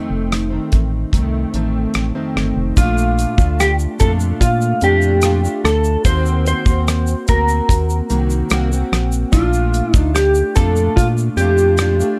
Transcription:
Already playing: F2 D#3 A3 C4 D#4
0.10 F1
0.32 cross-stick, closed hi-hat
0.50 D#3 A3 C4
0.72 A1, kick, closed hi-hat
1.12 C2 F2 D#3 A3 C4, kick, closed hi-hat
1.53 A1 F2 D#3 A3 C4, closed hi-hat
1.94 A1, cross-stick, closed hi-hat
2.15 F2 D#3 A3 C4
2.36 G1, cross-stick, closed hi-hat
2.56 F1
2.76 A#1 A#2 A3 D4 F4, kick, closed hi-hat, shaker
2.98 shaker
3.19 closed hi-hat, shaker
3.37 D2 A3 D4 F4, kick, shaker
3.60 G4, cross-stick, closed hi-hat, shaker
3.79 shaker
3.99 F2 A#2 A3 D4 F4 A4, kick, closed hi-hat, shaker
4.20 shaker
4.41 A#2 F4, kick, closed hi-hat, shaker
4.61 shaker
4.81 F2 A#2 A3 D4 F4 G4, closed hi-hat, shaker
5.02 shaker
5.22 A#2 A3 D4 F4, cross-stick, closed hi-hat, shaker
5.43 A3 D4 F4, shaker
5.64 D2 A4, cross-stick, closed hi-hat, shaker
5.84 shaker
6.05 D#2 D#3 A#3 C4 F#4 C5, kick, closed hi-hat, shaker
6.26 shaker
6.46 C5, closed hi-hat, shaker
6.66 D#2 A#3 C4 F#4, kick, shaker
6.88 cross-stick, closed hi-hat, shaker
7.07 shaker
7.28 D2 A#3 C4 F#4 A#4, kick, closed hi-hat, shaker
7.48 shaker
7.69 D#2, kick, closed hi-hat, shaker
7.90 shaker
8.10 C2 D#3 A#3 C4 F#4, closed hi-hat, shaker
8.30 shaker
8.50 C2 D#3 A#3 C4 F#4, cross-stick, closed hi-hat, shaker
8.71 A#3 C4 F#4, shaker
8.92 A#1, cross-stick, closed hi-hat, shaker
9.12 shaker
9.32 A#1 A#2 A3 D4 F4, kick, closed hi-hat, shaker
9.53 shaker
9.74 closed hi-hat, shaker
9.93 D2 A3 D4 D#4 F4, kick, shaker
10.15 G4, cross-stick, closed hi-hat, shaker
10.35 shaker
10.56 F2 A#2 A3 D4 F4 A4, kick, closed hi-hat, shaker
10.76 shaker
10.96 A#2 F4, kick, closed hi-hat, shaker
11.17 shaker
11.37 F2 A#2 A3 D4 F4 G4, closed hi-hat, shaker
11.58 shaker
11.77 A#2 A3 D4, cross-stick, closed hi-hat, shaker
11.82 F4
11.99 A3 D4 F4, shaker

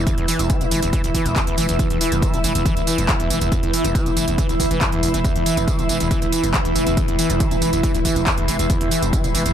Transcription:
Already playing: E3 E4 B4 E5 E6
0.07 kick, closed hi-hat, tambourine
0.18 E1 E2, closed hi-hat
0.28 E3, open hi-hat, tambourine
0.39 E1 E2, closed hi-hat, tambourine
0.50 E3, kick, closed hi-hat, tambourine
0.61 E1 A2, closed hi-hat, tambourine
0.71 E1 E3, open hi-hat, tambourine
0.82 E1 E2, closed hi-hat, tambourine
0.93 E3, kick, closed hi-hat, tambourine
1.04 E1 D2, closed hi-hat, tambourine
1.15 E3, kick, open hi-hat, tambourine
1.26 E1 E2, closed hi-hat, tambourine
1.36 E2, kick, clap, closed hi-hat, tambourine
1.47 E1 E2, closed hi-hat
1.58 E1 E3, open hi-hat, tambourine
1.69 E1 E2, closed hi-hat, tambourine
1.79 E2, kick, closed hi-hat, tambourine
1.90 E1 E2, closed hi-hat
2.01 E3, open hi-hat, tambourine
2.12 E1 E2, closed hi-hat, tambourine
2.22 E3, kick, closed hi-hat, tambourine
2.33 E1 A2, closed hi-hat, tambourine
2.44 E1 E3, open hi-hat, tambourine
2.55 E1 E2, closed hi-hat, tambourine
2.66 E3, kick, closed hi-hat, tambourine
2.77 E1 D2, closed hi-hat, tambourine
2.87 E3, open hi-hat, tambourine
2.98 E1 E2, closed hi-hat, tambourine
3.09 E2, kick, clap, closed hi-hat, tambourine
3.20 E1 E2, closed hi-hat
3.30 E1 E3, open hi-hat, tambourine
3.41 E1 E2, closed hi-hat, tambourine
3.52 E2, kick, closed hi-hat, tambourine
3.63 E1 E2, closed hi-hat
3.73 E3, open hi-hat, tambourine
3.84 E1 E2, closed hi-hat, tambourine
3.95 E3, kick, closed hi-hat, tambourine
4.06 E1 A2, closed hi-hat, tambourine
4.17 E1 E3, open hi-hat, tambourine
4.28 E1 E2, closed hi-hat, tambourine
4.38 E3, kick, closed hi-hat, tambourine
4.49 E1 D2, closed hi-hat, tambourine
4.60 E2, kick, open hi-hat, tambourine
4.71 E1 E3, closed hi-hat, tambourine
4.81 E2, kick, clap, closed hi-hat, tambourine
4.92 E1 E2, closed hi-hat
5.03 E1 E2, open hi-hat, tambourine
5.14 E1 E3, closed hi-hat, tambourine
5.24 E2, kick, closed hi-hat, tambourine
5.36 E1 E2, closed hi-hat
5.46 E3, open hi-hat, tambourine
5.57 E1 E2, closed hi-hat, tambourine
5.68 E3, kick, closed hi-hat, tambourine
5.79 E1 A2, closed hi-hat, tambourine
5.89 E1 E3, open hi-hat, tambourine
6.00 E1 E2, closed hi-hat, tambourine
6.11 E3, kick, closed hi-hat, tambourine
6.22 E1 D2, closed hi-hat, tambourine
6.32 E3, open hi-hat, tambourine
6.43 E1 E2, closed hi-hat, tambourine
6.54 E2, kick, clap, closed hi-hat, tambourine
6.65 E1 E2, closed hi-hat
6.76 E1 E3, open hi-hat, tambourine
6.87 E1 E2, closed hi-hat, tambourine
6.97 E2, kick, closed hi-hat, tambourine
7.08 E1 E2, closed hi-hat
7.19 E3, open hi-hat, tambourine
7.30 E1 E2, closed hi-hat, tambourine
7.40 E3, kick, closed hi-hat, tambourine
7.51 E1 A2, closed hi-hat, tambourine
7.62 E1 E3, open hi-hat, tambourine
7.73 E1 E2, closed hi-hat, tambourine
7.83 E3, kick, closed hi-hat, tambourine
7.94 E1 D2, closed hi-hat, tambourine
8.05 E3, kick, open hi-hat, tambourine
8.16 E1 E2, closed hi-hat, tambourine
8.27 E2, kick, clap, closed hi-hat, tambourine
8.38 E1 E2, closed hi-hat
8.48 E1 E3, open hi-hat, tambourine
8.59 E1 E2, closed hi-hat, tambourine
8.70 E2, kick, closed hi-hat, tambourine
8.81 E1 E2, closed hi-hat
8.91 E3, open hi-hat, tambourine
9.02 E1 E2, closed hi-hat, tambourine
9.13 E3, kick, closed hi-hat, tambourine
9.24 E1 A2, closed hi-hat, tambourine
9.34 E1 E3, open hi-hat, tambourine
9.46 E1 E2, closed hi-hat, tambourine

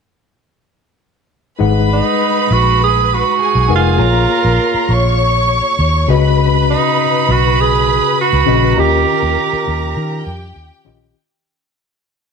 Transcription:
1.59 G#1 G#3 D#4 G#4 B4 F#5 B5
1.93 D#4
2.51 A#1 F#4
2.84 G#4
3.14 F#4
3.39 G#4 G#5
3.55 B1
3.69 F1 G#3 D#4 A#4 B4 F#5
3.76 F4
3.98 A#1 A#3 F4 G#4 A#4 C#5 A#5
4.44 A#1
4.74 muted fingered electric bass stroke
4.89 A#1 C#5 C#6
5.79 D#2
6.08 C#2 C#3 C#4 F#4 B4 D#5 B5
6.70 D#4
7.29 B1 F#4
7.61 G#4
8.21 F#4
8.33 C#2
8.46 A#1 C#3 C#4 F#4 B4 D#5
8.76 D#2 D#3 C#4 F4 G4 A#4 D#5 A#5
8.80 G4
9.23 D#2
9.53 muted fingered electric bass stroke
9.68 D#2
9.97 D#3
10.26 F2 G4 G5
10.56 D#2
10.84 A#1 D#3 C#4 F4 G4 D#5

